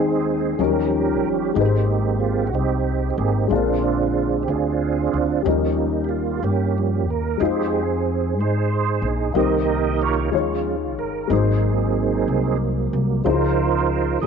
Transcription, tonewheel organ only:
Already playing: D#3 G#3 C4 D#4 G#4
0.59 F3 G3 C#4 G4 A#4
1.55 G#3 A#3 C4 D#4 G4
2.20 F4
2.47 F#4
2.55 C4 D#4 G4
3.10 G4
3.18 A#3 C4 G4 G#4
3.49 D3 G#3 C4 D4 F4
4.43 G4
4.50 D4 F4 G#4
5.48 F3 G3 A#3 C#4 D#4
6.04 G4
6.09 F4
6.44 A#3 C#4 G4
6.78 F3 G3 C#4
7.10 A#4
7.40 G#3 C4 D#4 G4 G#4
8.40 D#4 G#4 C5
9.36 D#3 A#3 D#4 G4 A#4 D#5
10.02 F4 C#5
10.32 F3 G#3 C#4
10.99 A#4
11.31 F#3 A#3 C4 D#4 G#4
13.25 F3 D#4 F4 A#4 C5
14.20 E3 A#3 E4 G#4 D#5

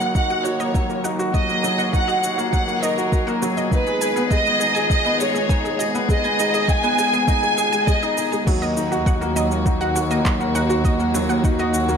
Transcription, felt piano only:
Already playing: F#3 D#4 F#4
0.00 A#3
0.15 D#4
0.30 F#4
0.45 F#4
0.60 A#3
0.75 F#3
0.90 A#3
1.05 D#4
1.19 F#4
1.35 F#4
1.49 A#3
1.64 F#3
1.79 A#3
1.94 D#4
2.08 F#4
2.23 F#4
2.38 A#3
2.53 F#3
2.68 A#3
2.83 D#4
2.97 F#4
3.12 F#4
3.27 A#3
3.42 F#3
3.58 A#3
3.73 D#4
3.87 G#4
4.02 G#4
4.17 B3
4.32 G#3
4.47 B3
4.62 D#4
4.76 G#4
4.91 G#4
5.06 B3
5.21 G#3
5.35 B3
5.50 D#4
5.65 G#4
5.80 G#4
5.95 B3
6.10 G#3
6.24 B3
6.39 D#4
6.54 G#4
6.69 G#4
6.83 B3
6.98 G#3
7.13 B3
7.28 D#4
7.43 G#4
7.58 G#4
7.73 G#3
7.88 G#3
8.03 D#4
8.17 D#4
8.32 G#3
8.47 F#3
8.62 A#3
8.77 D#4
8.92 F#4
9.07 F#4
9.21 A#3
9.36 F#3
9.51 A#3
9.66 D#4
9.80 F#4
9.96 F#4
10.10 A#3
10.25 F#3
10.40 A#3
10.55 D#4
10.69 F#4
10.85 F#4
10.99 A#3
11.14 F#3
11.29 A#3
11.44 D#4
11.59 F#4
11.73 F#4
11.89 A#3

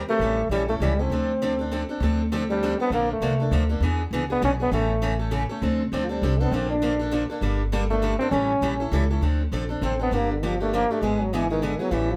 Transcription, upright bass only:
0.19 A1
0.49 A#1
0.80 C#2
1.10 D2
2.00 D2
2.90 A#1
3.21 C2
3.51 D2
3.80 E2
4.11 C#2
4.42 B1
4.72 A1
5.62 D2
5.92 D2
6.22 C2
6.51 A#1
7.41 G1
8.31 A1
8.61 A#1
8.91 C#2
9.21 D2
9.52 A#1
9.81 A1
10.11 G1
11.02 G#1
11.91 A1

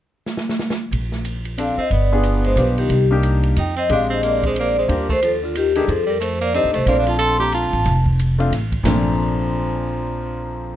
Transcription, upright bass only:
0.91 A#1
1.77 muted upright bass stroke
1.90 G1
2.56 B1
2.89 C2
3.57 F2
3.89 A#1
4.88 D#2
5.88 F2
6.64 D#2
6.76 C2
6.86 A#1
7.73 A1
7.86 F1
8.50 A1
8.83 A#1

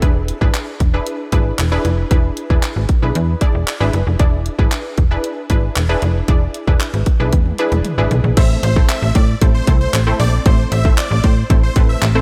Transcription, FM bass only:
0.02 E1
0.41 G#1
0.80 E1
1.32 G#1
1.59 E1
1.85 F1
2.11 E1
2.50 E1
2.76 G#1
3.02 B1
3.15 E2
3.55 E1
3.81 G#1
3.94 F#1
4.07 F1
4.20 E1
4.59 G#1
4.98 E1
5.50 G#1
5.76 E1
6.02 F1
6.28 E1
6.68 E1
6.94 G#1
7.20 B1
7.33 E2
7.72 E1
7.98 G#1
8.11 B1
8.24 A#1
8.37 A1
8.63 A1
9.02 A1
9.15 A2
9.42 A1
9.68 C2
9.93 A1
10.20 A#1
10.46 A1
10.72 A1
11.11 A1
11.24 A2
11.50 A1
11.76 A1
12.02 A1

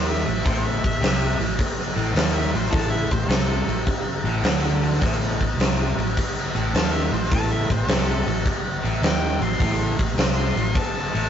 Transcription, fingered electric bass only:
Already playing: D#2
0.27 A1
0.45 A1
0.84 A1
1.01 C2
1.39 A1
1.96 A1
2.14 D#2
2.54 A1
2.73 A1
3.11 A1
3.28 C2
3.67 A1
4.24 A1
4.42 D2
5.02 A1
5.41 A1
5.58 C2
5.97 A1
6.55 A1
6.73 D#2
7.11 A1
7.31 A1
7.69 A1
7.87 C2
8.27 A1
8.84 A1
9.02 D#2
9.40 A1
9.59 A1
9.99 A1
10.17 C2
10.56 A1
11.14 A1

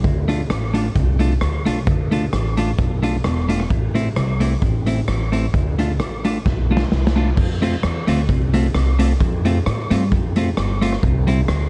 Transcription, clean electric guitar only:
0.28 A3 D4 F4
0.74 A3 D4 F4
1.19 A3 D4 F4
1.66 A3 D4 F4
2.11 A3 D4 F4
2.57 A3 D4 F4
2.79 muted clean electric guitar stroke
3.02 A3 D4 F4
3.49 A3 D4 F4
3.95 A3 C4 E4
4.40 A3 C4 E4
4.86 A3 C4 E4
5.32 A3 C4 E4
5.79 A3 D4 F4
6.25 A3 D4 F4
6.71 A3 D4 F4
7.16 A3 D4 F4
7.62 A3 C4 F4
7.83 muted clean electric guitar stroke
8.07 A3 C4 F4
8.54 A3 C4 F4
8.75 muted clean electric guitar stroke
8.99 A3 C4 F4
9.45 A3 C4 F4
9.66 muted clean electric guitar stroke
9.90 A3 C4 F4
10.36 A3 C4 F4
10.57 muted clean electric guitar stroke
10.82 A3 C4 F4
11.27 G3 C4 E4
11.48 muted clean electric guitar stroke

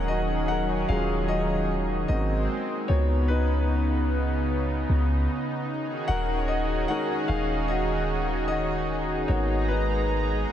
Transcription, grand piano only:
Already playing: A#4 F#5
0.08 F#4 D#5
0.48 A#4 F#5
0.89 F#3 G#3 C#4 F4 G#4 F5
1.28 F#4 D#5
2.08 A#3 C4 F#4 D#5
2.88 B3 D#4 F#4 C#5
3.28 D#4 B4
6.08 A#4 F#5
6.48 F#4 D#5
6.88 G#3 C#4 D#4 F#4 A#4 F#5
7.28 G#4 F5
7.68 F#4 D#5
8.48 F#4 D#5
9.28 A#3 B3 F#4 C#5
9.68 D#4 B4

